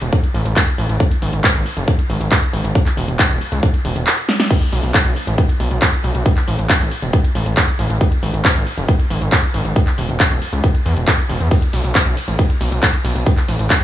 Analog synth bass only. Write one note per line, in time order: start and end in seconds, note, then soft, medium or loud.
0.02 0.10 E1 medium
0.34 0.43 A1 loud
0.45 0.54 A1 medium
0.78 0.86 A1 medium
0.89 0.97 A1 medium
1.22 1.30 G#1 medium
1.33 1.41 G#1 medium
1.55 1.63 G#1 medium
1.77 1.85 F#1 medium
2.10 2.18 G#1 loud
2.21 2.29 G#1 medium
2.53 2.62 G#1 medium
2.64 2.73 G#1 medium
2.97 3.05 E1 medium
3.08 3.16 E1 medium
3.30 3.38 E1 medium
3.52 3.60 C#2 medium
3.85 3.93 E1 loud
3.96 4.04 E1 medium
4.72 4.81 B1 loud
4.83 4.92 B1 medium
5.05 5.13 B1 medium
5.27 5.35 A1 medium
5.60 5.68 B1 loud
5.71 5.79 B1 medium
6.04 6.12 B1 medium
6.15 6.23 B1 medium
6.48 6.56 A1 loud
6.59 6.67 A1 medium
6.81 6.89 A1 medium
7.02 7.11 E1 medium
7.35 7.43 A1 loud
7.46 7.54 A1 medium
7.79 7.87 A1 medium
7.90 7.98 A1 medium
8.23 8.31 G#1 medium
8.34 8.42 G#1 medium
8.56 8.64 G#1 medium
8.78 8.86 F#1 medium
9.10 9.19 G#1 loud
9.21 9.29 G#1 medium
9.54 9.62 G#1 loud
9.65 9.73 G#1 medium
9.98 10.06 E1 medium
10.09 10.17 E1 medium
10.31 10.39 E1 medium
10.53 10.61 C#2 medium
10.86 10.94 E2 loud
10.97 11.05 E1 medium
11.29 11.38 E1 medium
11.40 11.48 E2 medium
11.73 11.81 B1 medium
11.84 11.92 B1 medium
12.06 12.14 B1 medium
12.28 12.36 A1 medium
12.61 12.69 B1 medium
12.72 12.80 B1 medium
13.05 13.13 B1 medium
13.16 13.24 B1 medium
13.48 13.56 A1 loud
13.59 13.67 A1 medium